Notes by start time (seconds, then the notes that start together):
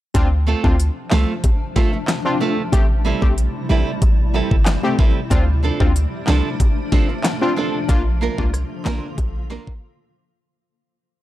0.14 D2 C3 F3 A3 C4 D4 F4, kick, closed hi-hat, high bongo
0.47 A3 C4 F4 A4
0.64 D2 C4 D4 F4, kick, high bongo
0.80 closed hi-hat
1.11 C2 A3 C4 F4 A4, snare, clap, high bongo
1.44 kick, closed hi-hat, high bongo
1.76 A3 C4 F4 A4, kick, snare, high bongo
1.93 muted nylon-string guitar stroke
2.08 snare, clap, closed hi-hat
2.25 C4 D4 F4, high bongo
2.40 A3 C4 F4 A4, low bongo
2.72 A1 G3 A3 C4 E4 G4, kick, closed hi-hat, high bongo
3.05 G3 C4 E4 A4
3.22 A#1 A3 C4 G4, kick, high bongo
3.38 closed hi-hat
3.69 A1 G3 C4 E4 A4, high bongo
4.02 A1, kick, closed hi-hat, high bongo
4.34 G3 C4 E4 A4, high bongo
4.51 G1, kick
4.66 snare, clap, closed hi-hat
4.83 A3 C4 G4, high bongo
4.98 A1 G3 C4 E4 A4, kick, low bongo
5.30 D2 F3 A3 C4 D4 F4, kick, closed hi-hat, high bongo
5.63 F3 C4 D4 A4
5.80 D2 C4 D4 F4, kick, high bongo
5.96 closed hi-hat
6.27 C2 F3 C4 D4 A4, snare, clap, high bongo
6.60 kick, closed hi-hat, high bongo
6.92 F3 C4 D4 A4, kick, snare, high bongo
7.09 muted nylon-string guitar stroke
7.24 snare, clap, closed hi-hat
7.41 C4 D4 F4, high bongo
7.56 F3 C4 D4 A4, low bongo
7.89 A#1 D3 A#3 D4 F4, kick, closed hi-hat, high bongo
8.21 A#3 D4 F4 A#4
8.38 C2 A#3 D4 F4, kick, high bongo
8.54 cross-stick, closed hi-hat
8.85 A#1 A#3 D4 F4 A#4, snare, clap, high bongo, low bongo
9.18 A#1, kick, closed hi-hat, high bongo
9.50 A#3 D4 F4 A#4, snare, high bongo
9.67 A1, kick